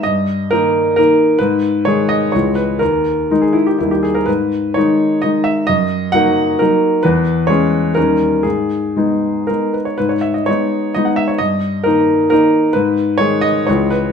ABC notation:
X:1
M:3/4
L:1/16
Q:1/4=127
K:G#m
V:1 name="Grand piano"
d4 A4 A4 | B4 c2 d2 c2 B2 | A4- A G E =G E G ^G A | B4 c4 d2 e2 |
d4 f4 A4 | B4 c4 A4 | G8 A2 B c | B c e d c4 d f e c |
d4 A4 A4 | B4 c2 d2 c2 B2 |]
V:2 name="Grand piano" clef=bass
=G,,4 [D,A,D]4 [D,A,D]4 | G,,4 [D,G,G]4 [C,,E,G,G]4 | D,,4 [D,G,D]4 [D,,D,=G,D]4 | G,,4 [D,G,D]4 [D,G,D]4 |
F,,4 [F,A,D]4 [F,A,D]4 | E,,4 [G,CG]4 [D,,=G,CD]4 | G,,4 [G,B,D]4 [G,B,D]4 | G,,4 [G,B,D]4 [G,B,D]4 |
=G,,4 [D,A,D]4 [D,A,D]4 | G,,4 [D,G,G]4 [C,,E,G,G]4 |]